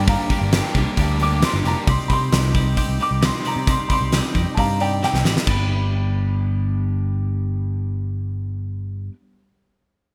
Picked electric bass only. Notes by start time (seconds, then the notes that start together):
Already playing: G2
0.41 G1
0.75 C2
0.97 D2
1.54 G1
1.64 F1
1.87 C2
2.10 C3
2.32 C2
2.88 C2
3.11 C2
3.56 C3
4.01 C2
4.35 F2
4.58 G2
5.14 C2
5.25 A1
5.47 G1